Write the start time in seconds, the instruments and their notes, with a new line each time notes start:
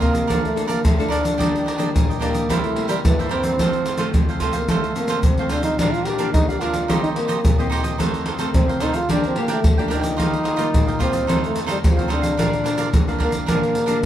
Already playing: nylon-string guitar C3
0.00 nylon-string guitar D#3 A#3 C4, trombone A#3, cavaquinho F4 A#4 D#5 F5, pandeiro, surdo
0.11 cavaquinho A#4 D#5 F5, pandeiro, shaker
0.27 nylon-string guitar F3 A#3 D4 A4, cavaquinho A#4 D5 F5 A5, pandeiro, shaker, surdo
0.44 trombone A3, pandeiro, shaker
0.56 nylon-string guitar A#3 D4 A4, pandeiro, shaker
0.67 trombone A#3, cavaquinho A#4 D5 F5 A5, pandeiro, shaker
0.84 nylon-string guitar F3, trombone A3, pandeiro, shaker, surdo
0.97 nylon-string guitar A#3 D4 A4, cavaquinho D5 F5 A5, pandeiro, shaker
1.08 trombone D4, cavaquinho A#4 D5 F5 A5, pandeiro, shaker
1.23 cavaquinho D5 F5 A5, pandeiro, shaker
1.38 nylon-string guitar D#3 G3 A#3 D4, cavaquinho D4 G4 D5 D#5, pandeiro, shaker, surdo
1.56 pandeiro, shaker
1.65 cavaquinho D4 G4 D5 D#5, pandeiro
1.78 nylon-string guitar G3 A#3 D4, cavaquinho D4 G4 D5 D#5, pandeiro, shaker
1.94 nylon-string guitar A#2, pandeiro, shaker, surdo
2.08 cavaquinho G4 D5 D#5, pandeiro, shaker
2.20 nylon-string guitar G3 A#3 D4, trombone A#3, cavaquinho D4 G4 D5 D#5, pandeiro, shaker
2.33 cavaquinho G4 D5 D#5, pandeiro, shaker
2.49 nylon-string guitar C3 G3 A#3 E4, cavaquinho E4 A#4 C5 E5, pandeiro, shaker, surdo
2.64 trombone A3, pandeiro, shaker
2.76 nylon-string guitar G3 A#3 E4, pandeiro
2.88 trombone G3, cavaquinho E4 A#4 C5 E5, pandeiro, shaker
3.04 nylon-string guitar G2, trombone E3, pandeiro, shaker, surdo
3.19 nylon-string guitar G3 A#3 E4, cavaquinho A#4 C5 E5, pandeiro, shaker
3.29 trombone C4, cavaquinho E4 A#4 C5 E5, pandeiro
3.43 cavaquinho A#4 C5 E5, pandeiro, shaker
3.59 nylon-string guitar F2 F3 A3 C4, cavaquinho F4 A4 C5 F5, pandeiro, shaker, surdo
3.73 pandeiro, shaker
3.85 cavaquinho F4 A4 C5 F5, pandeiro, shaker
3.98 nylon-string guitar F3 A3 C4, cavaquinho F4 A4 C5 F5, pandeiro, shaker
4.14 nylon-string guitar C3, pandeiro, shaker, surdo
4.29 cavaquinho A4 C5 F5, pandeiro, shaker
4.40 nylon-string guitar F3 A3 C4, trombone A3, cavaquinho F4 A4 C5 F5, pandeiro, shaker, surdo
4.53 trombone A#3, cavaquinho A4 C5 F5, pandeiro, shaker
4.68 nylon-string guitar F2 F3 A3 C4, trombone A3, cavaquinho F4 A4 C5 F5, pandeiro, shaker, surdo
4.84 pandeiro, shaker
4.95 nylon-string guitar F3 A3 C4, trombone A#3, pandeiro, shaker
5.08 cavaquinho F4 A4 C5 F5, pandeiro, shaker
5.23 nylon-string guitar C3, trombone C4, pandeiro, shaker, surdo
5.38 nylon-string guitar F3 A3 C4, cavaquinho A4 C5 F5, pandeiro, shaker
5.49 trombone D4, cavaquinho F4 A4 C5 F5, pandeiro, shaker
5.63 trombone D#4, cavaquinho A4 C5 F5, pandeiro, shaker
5.79 nylon-string guitar A#2 F3 A#3 D4, trombone D4, cavaquinho D4 A#4 D5 F5, pandeiro, shaker, surdo
5.93 trombone F4, pandeiro, shaker
6.05 cavaquinho D4 A#4 D5 F5, trombone G4, pandeiro
6.18 nylon-string guitar F3 A#3 D4, cavaquinho D4 A#4 D5 F5, pandeiro, shaker
6.34 nylon-string guitar F2, trombone D#4, pandeiro, shaker, surdo
6.49 trombone G4, cavaquinho A#4 D5 F5, pandeiro, shaker
6.61 nylon-string guitar F3 A#3 D4, cavaquinho D4 A#4 D5 F5, trombone F4, pandeiro
6.73 cavaquinho A#4 D5 F5, pandeiro, shaker
6.88 nylon-string guitar D#3 A#3 C4 G4, cavaquinho D#4 G4 C5 D#5, pandeiro, shaker, surdo
7.03 trombone D#4, pandeiro, shaker
7.15 trombone A#3, nylon-string guitar A#3 C4 G4, pandeiro
7.28 cavaquinho D#4 G4 C5 D#5, pandeiro, shaker
7.44 nylon-string guitar A#2, pandeiro, shaker, surdo
7.58 nylon-string guitar A#3 C4 G4, cavaquinho G4 C5 D#5, pandeiro, shaker
7.70 cavaquinho D#4 G4 C5 D#5, pandeiro
7.83 cavaquinho G4 C5 D#5, pandeiro, shaker
7.98 nylon-string guitar F2 D#3 A3 C4, cavaquinho D#4 A4 C5 F5, pandeiro, shaker, surdo
8.14 pandeiro, shaker
8.25 cavaquinho D#4 A4 C5 F5, pandeiro
8.39 nylon-string guitar D#3 A3 C4, cavaquinho D#4 A4 C5 F5, pandeiro, shaker
8.54 nylon-string guitar C3, trombone C4, pandeiro, shaker, surdo
8.68 cavaquinho A4 C5 F5, pandeiro, shaker
8.80 nylon-string guitar D#3 A3 C4, cavaquinho D#4 A4 C5 F5, trombone D#4, pandeiro, shaker
8.93 trombone F4, cavaquinho A4 C5 F5, pandeiro, shaker
9.09 nylon-string guitar F3 A#3 D4 G4, cavaquinho D4 A#4 D5 G5, trombone D4, pandeiro, shaker, surdo
9.24 trombone C4, pandeiro, shaker
9.36 nylon-string guitar A#3 D4 G4, trombone A#3, pandeiro
9.48 trombone A3, cavaquinho D4 A#4 D5 G5, pandeiro, shaker
9.64 nylon-string guitar F3, pandeiro, shaker, surdo
9.78 nylon-string guitar A#3 D4 G4, cavaquinho A#4 D5 G5, pandeiro, shaker
9.88 cavaquinho D4 A#4 D5 G5, pandeiro, shaker
9.94 trombone D#4
10.01 cavaquinho A#4 D5 G5, pandeiro, shaker
10.17 nylon-string guitar D#3 G3 A#3 F4, cavaquinho F4 G4 D#5 F5, pandeiro, shaker, surdo
10.33 pandeiro, shaker
10.43 cavaquinho F4 G4 D#5 F5, pandeiro
10.56 nylon-string guitar G3 A#3 F4, cavaquinho F4 G4 D#5 F5, pandeiro, shaker
10.74 nylon-string guitar A#2, pandeiro, shaker, surdo
10.86 cavaquinho G4 D#5 F5, pandeiro, shaker
10.99 nylon-string guitar G3 A#3 F4, trombone C4, cavaquinho F4 G4 D#5 F5, pandeiro, shaker, surdo
11.12 cavaquinho G4 D#5 F5, pandeiro, shaker
11.27 nylon-string guitar F2 D#3 A3 C4, cavaquinho D#4 A4 C5 F5, pandeiro, shaker, surdo
11.44 trombone A3, pandeiro, shaker
11.55 nylon-string guitar D#3 A3 C4, pandeiro, shaker
11.66 cavaquinho D#4 A4 C5 F5, pandeiro, shaker
11.71 trombone G3
11.84 nylon-string guitar C3, trombone F3, pandeiro, shaker, surdo
11.97 nylon-string guitar D#3 A3 C4, cavaquinho A4 C5 F5, pandeiro, shaker
12.08 cavaquinho D#4 A4 C5 F5, pandeiro
12.12 trombone D4
12.22 cavaquinho A4 C5 F5, pandeiro, shaker
12.37 nylon-string guitar A#2 F3 A#3 D4, cavaquinho D4 A#4 D5 F5, pandeiro, shaker, surdo
12.53 pandeiro, shaker
12.64 nylon-string guitar F3 A#3 D4, cavaquinho D4 A#4 D5 F5, pandeiro, shaker
12.77 cavaquinho D4 A#4 D5 F5, pandeiro, shaker
12.93 nylon-string guitar F2, pandeiro, shaker, surdo
13.07 nylon-string guitar F3 A#3 D4, cavaquinho A#4 D5 F5, pandeiro, shaker
13.18 trombone A#3, cavaquinho D4 A#4 D5 F5, pandeiro, surdo
13.30 cavaquinho A#4 D5 F5, pandeiro, shaker
13.46 nylon-string guitar A#2 F3 A#3 D4, trombone A#3, cavaquinho D4 A#4 D5 F5, pandeiro, shaker, surdo
13.63 pandeiro, shaker
13.75 pandeiro, shaker
13.86 nylon-string guitar F3 A#3 D4, cavaquinho D4 A#4 D5 F5, pandeiro, shaker